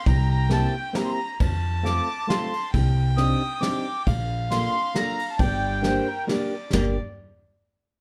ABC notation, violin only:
X:1
M:3/4
L:1/8
Q:"Swing" 1/4=135
K:Gm
V:1 name="Violin"
g4 b2 | a6 | g6 | f6 |
d2 c B d2 | d z4 z |]